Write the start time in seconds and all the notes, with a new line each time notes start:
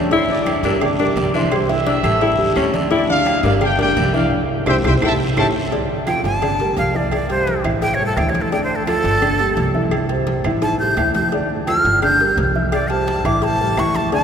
Already playing: D2
0.11 D3 D4 E4 C5 D5 C6, cowbell, low agogo, long guiro
0.29 D3 D4 D5 D6, high conga
0.46 cowbell, high conga, low timbale, low agogo, short guiro, claves
0.63 G1 G3 D4 G4 A#4 E5 E6, cowbell, high conga, low agogo, short guiro
0.81 D3 D4 D5 D6, cowbell, high conga, low conga, low agogo, long guiro, claves
0.99 G3 D4 G4 A#4 D5 D6, cowbell, high conga, low conga
1.16 C2, cowbell, high conga, low timbale, low agogo, short guiro
1.34 E3 D4 E4 C5 E5 C6, high conga, short guiro
1.51 G3 G4 C5, cowbell, high conga, low agogo, long guiro, claves
1.69 E3 E4 E5 E6, cowbell, high conga, low agogo
1.86 D4, cowbell, high conga, low timbale, short guiro
2.03 A1 G3 G4 A4, cowbell, high conga, low agogo, short guiro, claves
2.21 E4, cowbell, high conga, low agogo, long guiro
2.38 C#2 G3 G4 A4, high conga
2.56 D2 C#4, cowbell, high conga, low timbale, low agogo, short guiro, claves
2.73 D3 D4 D5, cowbell, high conga, short guiro
2.91 D3 D4 E4 D5 D6, cowbell, high conga, low agogo, long guiro
3.09 D3 D4 D5 F5, high conga
3.26 cowbell, high conga, low timbale, low agogo, short guiro, claves
3.43 G1 G3 D4 G4 A#4 F5, cowbell, high conga, low agogo, short guiro
3.61 D3 D4 G4 D5 G5, cowbell, high conga, low conga, low agogo, long guiro, claves
3.78 G3 D4 G4 A#4 G5, cowbell, high conga, low conga
3.96 C2, cowbell, high conga, low timbale, low agogo, short guiro
4.14 E3 D4 E4 E5 F5, high conga, short guiro
4.66 C2 C4 D4 E4 G4 C5 E5 G5, cowbell, low conga, high timbale, long guiro, claves
4.83 C2 C4 E4 G4 C5 E5 G5, cowbell, low conga, high timbale, long guiro, claves
5.01 A1 E4 G4 A4 E5 G5 A5, cowbell, low conga, high timbale, long guiro, claves
5.36 A1 C#4 E4 G4 A4 E5 G5 A5, cowbell, low conga, high timbale, long guiro, claves
5.71 D3 D4 D5, cowbell, high conga, low agogo
5.90 high conga
6.07 F3 F4 A4 G5, cowbell, high conga, low timbale, low agogo, claves
6.24 G1 A5, cowbell, high conga, low agogo
6.42 D3 D4 D5, cowbell, high conga, low conga, low agogo, claves
6.60 G3 G4 A#4, cowbell, high conga, low conga
6.77 C2 F5, cowbell, high conga, low timbale, low agogo
6.95 E3 E4 D5 E5, high conga
7.11 D5, cowbell, high conga, low agogo, claves
7.29 G3 G4 C5, cowbell, high conga, low agogo
7.47 cowbell, high conga, low timbale
7.64 A1 E3 E4 E5, cowbell, high conga, low agogo, claves
7.82 G5, cowbell, high conga, low agogo
7.94 C#5
8.00 G3 G4 A4, high conga
8.06 A4
8.17 D2 E3 E4 E5 G5, cowbell, high conga, low timbale, low agogo, claves
8.29 C#5
8.34 cowbell, high conga
8.41 A4
8.52 D3 D4 D5 G5, cowbell, low agogo
8.64 C5
8.70 high conga
8.76 A4
8.87 F3 F4 A4, cowbell, high conga, low timbale, low agogo, claves
9.04 G1, cowbell, high conga, low agogo
9.21 D3 D4 D5, cowbell, high conga, low conga, low agogo, claves
9.39 G3 A#3 G4, cowbell, high conga
9.57 C2, cowbell, high conga, low timbale, low agogo
9.74 E3 E4 E5, high conga
9.91 cowbell, high conga, low agogo, claves
10.09 G3 G4 C5, cowbell, high conga, low agogo
10.26 cowbell, high conga, low timbale
10.44 A1 E3 E4 E5, cowbell, high conga, high timbale, low agogo, claves
10.62 A5, cowbell, high conga, high timbale, low agogo
10.79 G3 G4 A4 G6, high conga
10.97 D2 E3 E4 E5, cowbell, high conga, low timbale, low agogo, claves
11.15 G6, cowbell, high conga, low timbale
11.32 D3 D4 D5, cowbell, low agogo
11.50 high conga
11.67 F3 F4 A4 F6, cowbell, high conga, low timbale, low agogo, claves
11.84 G1, cowbell, high conga, low agogo
12.02 D3 D4 D5 G6, cowbell, high conga, low conga, low agogo, claves
12.20 G3 G4 A#4, cowbell, high conga
12.37 C2, cowbell, high conga, low timbale, low agogo
12.55 E3 E4 E5, high conga
12.72 D5, cowbell, high conga, low agogo, claves
12.90 G3 G4 C5 A5, cowbell, high conga, low agogo
13.07 cowbell, high conga, low timbale
13.25 A1 E3 E4 E5 D6, cowbell, high conga, low agogo, claves
13.42 A5, cowbell, high conga, low agogo
13.60 G3 G4 A4, high conga
13.77 D2 E3 E4 E5 C#6, cowbell, high conga, low timbale, low agogo, claves
13.94 A5, cowbell, high conga
14.12 D3 D4 D5 A5, cowbell, low agogo